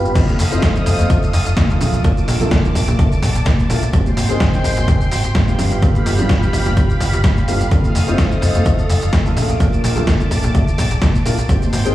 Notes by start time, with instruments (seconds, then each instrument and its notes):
Already playing: grand piano B3 D4 F4 G4 B4, string machine G4 F5 B5
0.05 fm bass G1, shaker
0.15 fm bass F2, grand piano A3 C4 D#4 F4 A4, string machine A4 F5 D#6, kick, closed hi-hat, crash, maracas, shaker
0.28 closed hi-hat, high conga, maracas, shaker
0.39 fm bass F1, open hi-hat, shaker
0.51 fm bass F1, grand piano A3 C4 D#4 F4 C5, closed hi-hat, maracas, shaker
0.62 fm bass F2, kick, snare, closed hi-hat, maracas, shaker
0.76 closed hi-hat, low conga, maracas, shaker
0.86 fm bass F1, kick, open hi-hat, shaker
0.99 fm bass F1, closed hi-hat, high conga, shaker, maracas
1.10 fm bass F2, grand piano A3 C4 D#4 F4 A4, kick, closed hi-hat, maracas, shaker
1.23 closed hi-hat, maracas, shaker
1.33 fm bass F1, open hi-hat, shaker
1.46 fm bass F1, closed hi-hat, maracas, shaker
1.57 fm bass F2, kick, snare, closed hi-hat, high conga, shaker, maracas
1.70 grand piano A3 A#3 D4 F4 A4, closed hi-hat, maracas, shaker
1.80 fm bass A#1, string machine A5 D6, open hi-hat, low conga, shaker
1.94 fm bass A#1, closed hi-hat, maracas, shaker
2.04 fm bass A#2, grand piano A#3 D4 F4 A4 A#4, kick, closed hi-hat, maracas, shaker
2.17 closed hi-hat, high conga, maracas, shaker
2.28 fm bass A#1, open hi-hat, shaker
2.40 fm bass A#1, grand piano A3 A#3 D4 F4 A4, closed hi-hat, low conga, maracas, shaker
2.51 fm bass A#2, kick, snare, closed hi-hat, maracas, shaker
2.65 closed hi-hat, low conga, shaker, maracas
2.75 fm bass A#1, kick, open hi-hat, shaker
2.88 fm bass A#1, closed hi-hat, high conga, maracas, shaker
2.99 fm bass A#2, grand piano A3 A#3 D4 F4 A4, kick, closed hi-hat, maracas, shaker
3.12 fm bass A#1, closed hi-hat, maracas, shaker
3.22 fm bass A#1, kick, open hi-hat, shaker
3.35 fm bass A#1, closed hi-hat, maracas, shaker
3.45 fm bass A#2, kick, snare, closed hi-hat, high conga, maracas, shaker
3.59 closed hi-hat, maracas, shaker
3.70 fm bass A#1, grand piano A3 A#3 D4 F4 A#4, open hi-hat, shaker
3.83 fm bass A#1, closed hi-hat, maracas, shaker
3.93 fm bass G#2, grand piano G#3 A#3 C4 D#4 G4, string machine G5 C6, kick, closed hi-hat, maracas, shaker
4.06 closed hi-hat, high conga, maracas, shaker
4.17 fm bass G#1, open hi-hat, shaker
4.29 fm bass G#1, grand piano G#3 A#3 C4 D#4 G#4, closed hi-hat, maracas, shaker
4.40 fm bass G#2, kick, snare, closed hi-hat, maracas, shaker
4.54 closed hi-hat, low conga, maracas, shaker
4.64 fm bass G#1, kick, open hi-hat, shaker
4.77 fm bass G#1, closed hi-hat, high conga, maracas, shaker
4.88 fm bass G#2, grand piano G#3 A#3 C4 D#4 G4, kick, closed hi-hat, maracas, shaker
5.01 closed hi-hat, maracas, shaker
5.12 fm bass G#1, open hi-hat, shaker
5.24 fm bass G#1, closed hi-hat, maracas, shaker
5.35 fm bass G#2, kick, snare, closed hi-hat, high conga, maracas, shaker
5.47 grand piano G3 B3 D4 F4 G4, closed hi-hat, maracas, shaker
5.59 fm bass G1, string machine G4 F5 B5, open hi-hat, low conga, shaker
5.72 fm bass G1, closed hi-hat, maracas, shaker
5.82 fm bass G2, grand piano G3 B3 D4 F4 A4, kick, closed hi-hat, maracas, shaker
5.95 closed hi-hat, high conga, maracas, shaker
6.06 fm bass G1, open hi-hat, shaker
6.18 fm bass G1, grand piano G3 B3 D4 F4 G4, closed hi-hat, low conga, maracas, shaker
6.29 fm bass G2, kick, snare, closed hi-hat, maracas, shaker
6.43 closed hi-hat, low conga, maracas, shaker
6.53 fm bass G1, kick, open hi-hat, shaker
6.65 fm bass G1, closed hi-hat, high conga, maracas, shaker
6.76 fm bass G2, grand piano G3 B3 D4 F4 G4, kick, closed hi-hat, maracas, shaker
6.90 fm bass G1, closed hi-hat, maracas, shaker
7.00 fm bass G1, kick, open hi-hat, shaker
7.13 fm bass G1, closed hi-hat, maracas, shaker
7.24 fm bass G2, kick, snare, closed hi-hat, high conga, maracas, shaker
7.37 closed hi-hat, maracas, shaker
7.48 fm bass G1, grand piano G3 B3 D4 F4 A4, open hi-hat, shaker
7.61 fm bass G1, closed hi-hat, maracas, shaker
7.71 fm bass F2, grand piano A3 C4 D#4 F4 A4, string machine A4 D#6, kick, closed hi-hat, maracas, shaker
7.84 closed hi-hat, high conga, maracas, shaker
7.95 fm bass F1, open hi-hat, shaker
8.07 fm bass F1, grand piano A3 C4 D#4 F4 C5, closed hi-hat, maracas, shaker
8.18 fm bass F2, kick, snare, closed hi-hat, maracas, shaker
8.31 closed hi-hat, low conga, maracas, shaker
8.42 fm bass F1, kick, open hi-hat, shaker
8.55 fm bass F1, closed hi-hat, high conga, maracas, shaker
8.65 fm bass F2, grand piano A3 C4 D#4 F4 A4, kick, closed hi-hat, maracas, shaker
8.78 closed hi-hat, maracas, shaker
8.90 fm bass F1, open hi-hat, shaker
9.02 fm bass F1, closed hi-hat, maracas, shaker
9.13 fm bass F2, kick, snare, closed hi-hat, high conga, maracas, shaker
9.25 grand piano A3 A#3 D4 F4 A4, closed hi-hat, maracas, shaker
9.37 fm bass A#1, string machine A5 D6, open hi-hat, low conga, shaker
9.49 fm bass A#1, closed hi-hat, maracas, shaker
9.60 fm bass A#2, grand piano A#3 D4 F4 A4 A#4, kick, closed hi-hat, maracas, shaker
9.72 closed hi-hat, high conga, maracas, shaker
9.84 fm bass A#1, open hi-hat, shaker
9.96 fm bass A#1, grand piano A3 A#3 D4 F4 A4, closed hi-hat, low conga, maracas, shaker
10.07 fm bass A#2, kick, snare, closed hi-hat, maracas, shaker
10.20 closed hi-hat, low conga, maracas, shaker
10.31 fm bass A#1, kick, open hi-hat, shaker
10.43 fm bass A#1, closed hi-hat, high conga, maracas, shaker
10.54 fm bass A#2, grand piano A3 A#3 D4 F4 A4, kick, closed hi-hat, maracas, shaker
10.68 fm bass A#1, closed hi-hat, shaker, maracas
10.78 fm bass A#1, kick, open hi-hat, shaker
10.91 fm bass A#1, closed hi-hat, maracas, shaker
11.02 fm bass A#2, kick, snare, closed hi-hat, high conga, maracas, shaker
11.15 closed hi-hat, maracas, shaker
11.25 fm bass A#1, grand piano A3 A#3 D4 F4 A#4, open hi-hat, shaker
11.38 fm bass A#1, closed hi-hat, maracas, shaker
11.49 fm bass G#2, grand piano G#3 A#3 C4 D#4 G4, string machine G5 C6, kick, closed hi-hat, maracas, shaker
11.62 closed hi-hat, high conga, maracas, shaker
11.73 fm bass G#1, open hi-hat, shaker
11.85 fm bass G#1, grand piano G#3 A#3 C4 D#4 G#4, closed hi-hat, maracas, shaker